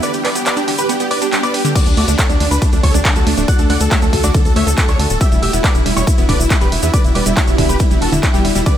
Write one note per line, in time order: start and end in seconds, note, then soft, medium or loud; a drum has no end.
0.00 0.11 D3 medium
0.00 1.72 B3 medium
0.00 5.17 D4 medium
0.00 1.72 G4 medium
0.00 0.12 B4 medium
0.00 0.12 D5 loud
0.00 0.12 D6 loud
0.00 closed hi-hat medium
0.00 shaker medium
0.13 0.22 G4 medium
0.13 0.22 G5 medium
0.13 closed hi-hat medium
0.13 shaker soft
0.24 0.30 B3 medium
0.24 0.33 B4 medium
0.24 0.33 D5 medium
0.24 0.33 D6 medium
0.24 clap medium
0.24 open hi-hat loud
0.35 0.39 B3 medium
0.35 0.44 G4 medium
0.35 0.44 G5 medium
0.35 closed hi-hat medium
0.35 shaker medium
0.46 0.55 B4 medium
0.46 0.55 D5 medium
0.46 0.55 D6 medium
0.46 clap loud
0.46 closed hi-hat medium
0.46 shaker medium
0.57 0.62 D4 medium
0.57 0.66 G4 medium
0.57 0.66 G5 medium
0.57 closed hi-hat medium
0.57 shaker soft
0.68 0.76 D3 medium
0.68 0.76 G4 medium
0.68 0.77 G5 medium
0.68 open hi-hat loud
0.78 0.87 G4 medium
0.78 0.87 B4 medium
0.78 0.87 B5 loud
0.78 closed hi-hat medium
0.78 shaker medium
0.89 0.95 B3 medium
0.89 0.98 G4 medium
0.89 0.98 G5 medium
0.89 closed hi-hat medium
0.89 shaker medium
1.00 1.03 B3 medium
1.00 1.09 G4 medium
1.00 1.09 G5 medium
1.00 closed hi-hat medium
1.00 shaker soft
1.10 1.19 B4 medium
1.10 1.19 D5 loud
1.10 1.20 D6 medium
1.10 open hi-hat loud
1.21 1.27 D4 medium
1.21 1.30 G4 medium
1.21 1.30 G5 medium
1.21 closed hi-hat medium
1.21 shaker medium
1.32 1.36 G3 medium
1.32 1.41 G4 medium
1.32 1.41 G5 medium
1.32 clap loud
1.32 closed hi-hat medium
1.32 shaker medium
1.43 1.52 B4 medium
1.43 1.52 D5 loud
1.43 1.52 D6 medium
1.43 closed hi-hat medium
1.43 shaker soft
1.54 1.63 G4 medium
1.54 1.59 B4 medium
1.54 1.63 G5 medium
1.54 open hi-hat loud
1.65 1.73 D3 loud
1.65 1.73 G4 medium
1.65 1.74 G5 medium
1.65 closed hi-hat medium
1.65 shaker medium
1.75 1.84 D3 medium
1.75 5.17 A3 medium
1.75 8.62 F#4 medium
1.75 1.84 F#4 medium
1.75 1.84 D5 loud
1.75 1.84 D6 loud
1.75 kick loud
1.75 closed hi-hat medium
1.75 crash medium
1.75 ride medium
1.75 shaker medium
1.86 1.94 D2 medium
1.86 1.95 D4 medium
1.86 1.95 D5 medium
1.86 closed hi-hat medium
1.86 shaker soft
1.97 2.05 D2 loud
1.97 2.03 A3 medium
1.97 2.06 F#4 medium
1.97 2.06 D5 medium
1.97 2.06 D6 medium
1.97 open hi-hat loud
2.08 2.16 D2 medium
2.08 2.11 A3 medium
2.08 2.17 D4 medium
2.08 2.17 D5 medium
2.08 closed hi-hat medium
2.08 shaker medium
2.19 2.27 A4 medium
2.19 2.27 C#5 medium
2.19 2.27 C#6 medium
2.19 kick loud
2.19 clap loud
2.19 closed hi-hat medium
2.19 ride medium
2.19 shaker medium
2.29 2.37 D2 medium
2.29 2.38 D4 medium
2.29 2.35 D4 medium
2.29 2.38 D5 medium
2.29 closed hi-hat medium
2.29 shaker soft
2.40 2.48 D2 loud
2.40 2.49 D3 medium
2.40 2.49 D4 medium
2.40 2.49 D5 medium
2.40 open hi-hat loud
2.51 2.59 D2 loud
2.51 2.60 D4 medium
2.51 2.60 B4 medium
2.51 2.60 B5 medium
2.51 closed hi-hat medium
2.51 shaker medium
2.62 2.67 A3 medium
2.62 2.71 D4 medium
2.62 2.71 D5 medium
2.62 kick loud
2.62 closed hi-hat medium
2.62 ride medium
2.62 shaker medium
2.73 2.80 D2 medium
2.73 2.76 A3 medium
2.73 2.81 D4 medium
2.73 2.81 D5 medium
2.73 closed hi-hat medium
2.73 shaker soft
2.83 2.91 D2 loud
2.83 2.92 A4 medium
2.83 2.92 C#5 medium
2.83 2.92 C#6 medium
2.83 kick medium
2.83 open hi-hat loud
2.94 3.02 D2 loud
2.94 3.03 D4 medium
2.94 3.00 D4 medium
2.94 3.03 D5 medium
2.94 closed hi-hat medium
2.94 shaker medium
3.05 3.13 D3 medium
3.05 3.14 D4 medium
3.05 kick loud
3.05 clap loud
3.05 closed hi-hat medium
3.05 ride medium
3.05 shaker medium
3.16 3.24 D2 medium
3.16 3.25 F#4 medium
3.16 3.25 A4 loud
3.16 3.25 A5 medium
3.16 closed hi-hat medium
3.16 shaker soft
3.27 3.34 D2 loud
3.27 3.32 A3 medium
3.27 3.35 D4 medium
3.27 3.35 D5 medium
3.27 open hi-hat loud
3.37 3.45 D1 medium
3.37 3.41 A3 medium
3.37 3.46 D4 medium
3.37 3.46 D5 medium
3.37 closed hi-hat medium
3.37 shaker medium
3.48 3.57 D5 medium
3.48 3.57 F#5 loud
3.48 3.57 F#6 loud
3.48 kick loud
3.48 closed hi-hat medium
3.48 ride medium
3.48 shaker medium
3.59 3.67 D2 medium
3.59 3.65 D4 medium
3.59 3.68 A4 medium
3.59 3.68 A5 medium
3.59 closed hi-hat medium
3.59 shaker soft
3.70 3.77 D2 loud
3.70 3.78 D3 medium
3.70 3.78 D5 medium
3.70 3.78 F#5 medium
3.70 3.79 F#6 medium
3.70 open hi-hat loud
3.80 3.88 D2 medium
3.80 3.89 A4 medium
3.80 3.89 A5 medium
3.80 closed hi-hat medium
3.80 shaker medium
3.91 3.97 A3 medium
3.91 4.00 C#5 medium
3.91 4.00 E5 medium
3.91 4.00 E6 medium
3.91 kick loud
3.91 clap loud
3.91 closed hi-hat medium
3.91 ride medium
3.91 shaker medium
4.02 4.10 D2 medium
4.02 4.05 A3 medium
4.02 4.11 A4 medium
4.02 4.11 A5 medium
4.02 closed hi-hat medium
4.02 shaker soft
4.13 4.21 D2 loud
4.13 4.22 A4 medium
4.13 4.22 A5 medium
4.13 kick medium
4.13 open hi-hat loud
4.23 4.31 D2 medium
4.23 4.29 D4 medium
4.23 4.32 F#4 medium
4.23 4.32 D5 medium
4.23 4.33 D6 loud
4.23 closed hi-hat medium
4.23 shaker medium
4.34 4.43 D3 medium
4.34 4.43 A4 medium
4.34 4.43 A5 medium
4.34 kick loud
4.34 closed hi-hat medium
4.34 ride medium
4.34 shaker medium
4.45 4.53 D2 medium
4.45 4.54 A4 medium
4.45 4.54 A5 medium
4.45 closed hi-hat medium
4.45 shaker soft
4.56 4.64 D2 loud
4.56 4.62 A3 medium
4.56 4.65 C#5 medium
4.56 4.65 E5 medium
4.56 4.65 E6 medium
4.56 open hi-hat loud
4.67 4.75 D2 loud
4.67 4.70 A3 medium
4.67 4.76 A4 medium
4.67 4.76 A5 medium
4.67 closed hi-hat medium
4.67 shaker medium
4.78 4.86 A4 medium
4.78 4.87 A5 medium
4.78 kick loud
4.78 clap loud
4.78 closed hi-hat medium
4.78 ride medium
4.78 shaker medium
4.88 4.96 D2 medium
4.88 4.94 D4 medium
4.88 4.97 A4 medium
4.88 4.97 C#5 loud
4.88 4.97 C#6 medium
4.88 closed hi-hat medium
4.88 shaker soft
4.99 5.07 D2 loud
4.99 5.07 D3 medium
4.99 5.08 A4 medium
4.99 5.08 A5 medium
4.99 open hi-hat loud
5.10 5.18 D1 medium
5.10 5.19 A4 medium
5.10 5.19 A5 medium
5.10 closed hi-hat medium
5.10 shaker medium
5.21 8.63 E3 medium
5.21 5.26 G3 medium
5.21 8.78 B3 medium
5.21 8.78 D4 medium
5.21 5.30 G4 medium
5.21 8.63 G4 medium
5.21 5.30 E5 loud
5.21 5.30 E6 loud
5.21 kick loud
5.21 closed hi-hat medium
5.21 ride medium
5.21 shaker medium
5.32 5.39 E1 medium
5.32 5.35 G3 medium
5.32 5.40 E4 medium
5.32 5.40 E5 medium
5.32 closed hi-hat medium
5.32 shaker soft
5.42 5.50 E1 loud
5.42 5.51 G4 medium
5.42 5.51 E5 medium
5.42 5.51 E6 medium
5.42 open hi-hat loud
5.53 5.61 E1 loud
5.53 5.59 B3 medium
5.53 5.62 E4 medium
5.53 5.62 E5 medium
5.53 closed hi-hat medium
5.53 shaker medium
5.64 5.72 D3 medium
5.64 5.73 B4 medium
5.64 5.73 D5 medium
5.64 5.73 D6 medium
5.64 kick loud
5.64 clap loud
5.64 closed hi-hat medium
5.64 ride medium
5.64 shaker medium
5.75 5.83 E1 medium
5.75 5.84 E4 medium
5.75 5.84 E5 medium
5.75 closed hi-hat medium
5.75 shaker soft
5.86 5.93 E1 loud
5.86 5.91 G3 medium
5.86 5.94 E4 medium
5.86 5.94 E5 medium
5.86 open hi-hat loud
5.96 6.04 E1 medium
5.96 6.00 G3 medium
5.96 6.05 E4 medium
5.96 6.05 C#5 medium
5.96 6.05 C#6 medium
5.96 closed hi-hat medium
5.96 shaker medium
6.07 6.16 E4 medium
6.07 6.16 E5 medium
6.07 kick loud
6.07 closed hi-hat medium
6.07 ride medium
6.07 shaker medium
6.18 6.26 E1 medium
6.18 6.23 B3 medium
6.18 6.27 E4 medium
6.18 6.27 E5 medium
6.18 closed hi-hat medium
6.18 shaker soft
6.29 6.37 E1 loud
6.29 6.37 D3 medium
6.29 6.38 B4 medium
6.29 6.38 D5 medium
6.29 6.38 D6 medium
6.29 kick medium
6.29 open hi-hat loud
6.39 6.47 E1 loud
6.39 6.48 E4 medium
6.39 6.48 E5 medium
6.39 closed hi-hat medium
6.39 shaker medium
6.50 6.56 G3 medium
6.50 6.59 E4 medium
6.50 6.59 E5 medium
6.50 kick loud
6.50 clap loud
6.50 closed hi-hat medium
6.50 ride medium
6.50 shaker medium
6.61 6.69 E1 medium
6.61 6.65 G3 medium
6.61 6.70 G4 medium
6.61 6.70 B4 medium
6.61 6.70 B5 medium
6.61 closed hi-hat medium
6.61 shaker soft
6.72 6.80 E1 loud
6.72 6.81 E4 medium
6.72 6.81 E5 medium
6.72 open hi-hat loud
6.82 6.91 E2 medium
6.82 6.88 B3 medium
6.82 6.92 E4 medium
6.82 6.91 E5 medium
6.82 closed hi-hat medium
6.82 shaker medium
6.93 7.02 D3 medium
6.93 7.02 B4 medium
6.93 7.02 D5 loud
6.93 7.02 D6 loud
6.93 kick loud
6.93 closed hi-hat medium
6.93 ride medium
6.93 shaker medium
7.04 7.12 E1 medium
7.04 7.13 E4 medium
7.04 7.13 E5 medium
7.04 closed hi-hat medium
7.04 shaker soft
7.15 7.23 E1 loud
7.15 7.21 G3 medium
7.15 7.24 B4 medium
7.15 7.24 D5 medium
7.15 7.24 D6 medium
7.15 open hi-hat loud
7.26 7.34 E1 loud
7.26 7.29 G3 medium
7.26 7.35 E4 medium
7.26 7.35 E5 medium
7.26 closed hi-hat medium
7.26 shaker medium
7.37 7.46 E4 medium
7.37 7.46 C#5 medium
7.37 7.46 C#6 medium
7.37 kick loud
7.37 clap loud
7.37 closed hi-hat soft
7.37 ride medium
7.37 shaker medium
7.48 7.55 E1 medium
7.48 7.53 B3 medium
7.48 7.56 E4 medium
7.48 7.56 E5 medium
7.48 closed hi-hat medium
7.48 shaker soft
7.58 7.66 E1 loud
7.58 7.67 D3 medium
7.58 7.67 E4 medium
7.58 7.67 E5 medium
7.58 kick medium
7.58 open hi-hat loud
7.69 7.77 E1 medium
7.69 7.78 G4 medium
7.69 7.78 B4 medium
7.69 7.78 B5 loud
7.69 closed hi-hat soft
7.69 shaker medium
7.80 7.85 G3 medium
7.80 7.89 E4 medium
7.80 7.89 E5 medium
7.80 kick loud
7.80 closed hi-hat medium
7.80 ride medium
7.80 shaker medium
7.90 7.98 E1 medium
7.90 7.94 G3 medium
7.90 8.00 E4 medium
7.90 7.99 E5 medium
7.90 closed hi-hat medium
7.90 shaker soft
8.01 8.09 E1 loud
8.01 8.10 F#4 medium
8.01 8.10 A4 medium
8.01 8.10 A5 medium
8.01 open hi-hat loud
8.12 8.20 E1 loud
8.12 8.16 D3 loud
8.12 8.21 E4 medium
8.12 8.21 E5 medium
8.12 closed hi-hat soft
8.12 shaker medium
8.23 8.29 D4 medium
8.23 8.32 E4 medium
8.23 kick loud
8.23 clap loud
8.23 closed hi-hat medium
8.23 ride medium
8.23 shaker medium
8.33 8.42 E1 medium
8.33 8.42 G3 loud
8.33 8.43 E4 medium
8.33 8.43 G4 loud
8.33 8.42 G5 medium
8.33 closed hi-hat medium
8.33 shaker soft
8.44 8.52 E1 loud
8.44 8.50 G3 medium
8.44 8.53 E4 medium
8.44 8.53 E5 medium
8.44 open hi-hat loud
8.55 8.63 E1 medium
8.55 8.61 G3 loud
8.55 8.64 E4 medium
8.55 8.64 E5 medium
8.55 closed hi-hat medium
8.55 shaker medium
8.66 8.74 D3 medium
8.66 8.75 B4 medium
8.66 8.75 D5 loud
8.66 8.75 D6 loud
8.66 kick loud
8.66 closed hi-hat medium
8.66 ride medium
8.66 shaker medium